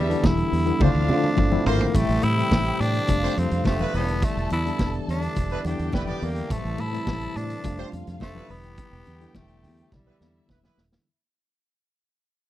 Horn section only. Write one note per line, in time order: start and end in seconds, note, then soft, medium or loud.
0.81 0.90 A3 medium
0.81 0.90 C4 medium
0.81 0.90 F4 medium
0.81 0.90 C5 loud
1.66 1.84 A3 medium
1.66 1.84 C4 loud
1.66 1.84 F4 loud
1.66 1.84 C5 loud
3.23 3.32 A3 loud
3.23 3.32 C4 loud
3.23 3.32 G4 medium
3.23 3.32 C5 loud
3.66 3.75 A3 medium
3.66 3.75 C4 medium
3.66 3.75 G4 loud
3.66 3.75 C5 medium
3.80 4.16 G3 loud
3.80 4.16 B3 loud
3.80 4.16 E4 loud
3.80 4.16 B4 loud
5.51 5.60 G3 loud
5.51 5.60 B3 loud
5.51 5.60 E4 loud
5.51 5.60 B4 loud
5.94 6.03 G3 medium
5.94 6.03 B3 medium
5.94 6.03 E4 medium
5.94 6.03 B4 loud
6.07 6.26 B3 loud
6.07 6.26 D4 loud
6.07 6.26 G4 loud
6.07 6.26 D5 loud
7.78 7.88 A3 medium
7.78 7.88 C4 loud
7.78 7.88 G4 medium
7.78 7.88 C5 loud
8.21 8.30 A3 medium
8.21 8.30 C4 medium
8.21 8.30 G4 medium
8.21 8.30 C5 loud
8.35 8.54 G3 loud
8.35 8.54 B3 medium
8.35 8.54 E4 loud
8.35 8.54 B4 loud
10.06 10.16 G3 medium
10.06 10.15 B3 medium
10.06 10.16 E4 medium
10.06 10.15 B4 loud
10.49 10.58 G3 medium
10.49 10.58 B3 medium
10.49 10.58 E4 medium
10.49 10.58 B4 medium
10.63 10.82 G3 medium
10.63 10.82 B3 loud
10.63 10.81 E4 loud
10.63 10.82 B4 loud